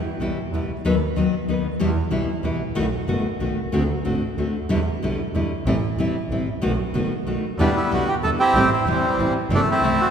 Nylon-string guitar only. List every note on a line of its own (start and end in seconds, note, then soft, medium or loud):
0.20 0.37 B2 medium
0.20 0.38 E3 medium
0.20 0.38 G3 medium
0.20 0.38 B3 medium
0.20 0.38 E4 medium
0.54 0.70 B2 medium
0.54 0.70 E3 medium
0.54 0.71 G3 medium
0.54 0.70 B3 medium
0.54 0.71 E4 medium
0.85 0.94 D#3 medium
0.85 0.94 F#3 medium
0.85 0.94 B3 medium
0.85 0.94 D#4 medium
0.85 0.94 B4 loud
1.16 1.33 D#3 medium
1.16 1.34 F#3 medium
1.16 1.34 B3 medium
1.16 1.34 D#4 medium
1.16 1.34 B4 medium
1.48 1.65 D#3 medium
1.48 1.66 F#3 medium
1.48 1.66 B3 medium
1.48 1.65 D#4 medium
1.48 1.66 B4 medium
1.80 1.89 B2 loud
1.80 1.89 E3 medium
1.80 1.89 G3 loud
1.80 1.90 B3 medium
1.80 1.90 E4 loud
2.11 2.29 B2 medium
2.11 2.28 E3 medium
2.11 2.29 G3 medium
2.11 2.29 B3 medium
2.11 2.29 E4 medium
2.43 2.61 B2 medium
2.43 2.61 E3 medium
2.43 2.61 G3 medium
2.43 2.61 B3 medium
2.43 2.62 E4 medium
2.75 2.85 B2 medium
2.75 2.85 D#3 medium
2.75 2.85 A3 medium
2.75 2.85 B3 loud
2.75 2.85 F#4 loud
3.08 3.25 B2 medium
3.08 3.26 D#3 medium
3.08 3.26 A3 medium
3.08 3.26 B3 medium
3.08 3.26 F#4 medium
3.40 3.58 B2 medium
3.40 3.58 D#3 medium
3.40 3.58 A3 medium
3.40 3.58 B3 medium
3.40 3.58 F#4 medium
3.72 3.82 D3 medium
3.72 3.82 A3 medium
3.72 3.83 C4 medium
3.72 3.83 F#4 medium
4.05 4.22 D3 medium
4.05 4.23 A3 medium
4.05 4.22 C4 medium
4.05 4.23 F#4 medium
4.38 4.55 D3 medium
4.38 4.55 A3 medium
4.38 4.55 C4 medium
4.38 4.56 F#4 medium
4.69 4.79 B2 medium
4.69 4.79 D3 medium
4.69 4.79 G3 loud
4.69 4.79 B3 loud
4.69 4.79 E4 loud
5.02 5.19 B2 medium
5.02 5.19 D3 medium
5.02 5.20 G3 medium
5.02 5.20 B3 medium
5.02 5.20 E4 medium
5.35 5.51 B2 medium
5.35 5.51 D3 medium
5.35 5.52 G3 medium
5.35 5.51 B3 medium
5.35 5.52 E4 medium
5.67 5.75 E3 medium
5.67 5.75 G3 loud
5.67 5.75 C4 medium
5.67 5.75 E4 loud
5.99 6.15 E3 medium
5.99 6.16 G3 medium
5.99 6.16 C4 medium
5.99 6.16 E4 medium
6.32 6.48 E3 medium
6.32 6.48 G3 medium
6.32 6.48 C4 medium
6.32 6.48 E4 medium
6.62 6.71 B2 medium
6.62 6.71 D#3 medium
6.62 6.71 A3 loud
6.62 6.71 B3 medium
6.62 6.72 F#4 loud
6.94 7.11 B2 medium
6.94 7.11 D#3 medium
6.94 7.11 A3 medium
6.94 7.12 B3 medium
6.94 7.12 F#4 medium
7.27 7.44 B2 medium
7.27 7.44 D#3 medium
7.27 7.44 A3 medium
7.27 7.44 B3 medium
7.27 7.44 F#4 medium
7.59 7.68 B2 medium
7.59 7.68 D3 medium
7.59 7.69 G3 medium
7.59 7.69 B3 loud
7.59 7.69 E4 loud
7.91 8.08 B2 medium
7.91 8.08 D3 medium
7.91 8.09 G3 medium
7.91 8.09 B3 medium
7.91 8.09 E4 medium
8.23 8.40 B2 medium
8.23 8.40 D3 medium
8.23 8.41 G3 medium
8.23 8.41 B3 medium
8.23 8.41 E4 medium
8.56 8.64 E3 medium
8.56 8.65 G3 loud
8.56 8.65 C4 loud
8.56 8.65 E4 loud
8.87 9.04 E3 medium
8.87 9.04 G3 medium
8.87 9.04 C4 medium
8.87 9.04 E4 medium
9.19 9.36 E3 medium
9.19 9.36 G3 medium
9.19 9.36 C4 medium
9.19 9.36 E4 medium
9.50 9.59 E3 medium
9.50 9.59 A3 medium
9.50 9.60 C4 medium
9.50 9.60 E4 medium
9.84 10.00 E3 medium
9.84 10.00 A3 medium
9.84 10.00 C4 medium
9.84 10.00 E4 medium